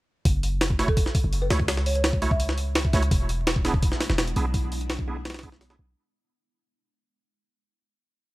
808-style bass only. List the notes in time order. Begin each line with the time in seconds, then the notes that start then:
0.25 F#1
1.24 F#1
1.51 C#2
2.93 C#2
3.11 E1
4.10 E1
4.36 B1
5.79 B1